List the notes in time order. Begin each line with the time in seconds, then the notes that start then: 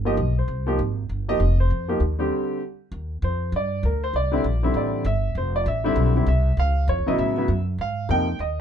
Already playing: G1
0.05 F3 A#3 D#4 G4 D#5
0.17 B1
0.39 C5
0.48 C2
0.67 F3 A#3 D#4 G4
0.79 G#1
1.09 G1
1.28 F3 A#3 D#4 G4 D#5
1.40 F1
1.60 C5
1.70 F2
1.88 F3 A#3 D#4 G4
2.00 D#2
2.19 D3 G3 C4 G4
2.92 D#2
3.22 F2 C5
3.52 G2 D5
3.83 D2 A#4
4.04 C5
4.13 C2 D5
4.32 D3 G3 C4 E4
4.44 A#1
4.63 D3 G3 C4 E4
4.74 A1 D5
5.05 G1 E5
5.35 F1 C5
5.56 D5
5.66 A1 E5
5.84 D3 G3 C4 E4
5.96 B1
6.16 D3 G3 C4 E4
6.26 C2 E5
6.57 C#2 F5
6.88 F2 C#5
6.98 C#2
7.07 A#1 C#3 F#3 B3 E4 D#5
7.18 A2 E5
7.37 C#3 F#3 B3 E4
7.48 F#2
7.78 G#2 F5
8.09 F2 C3 F3 A#3 D#4 G5
8.39 D#2 D#5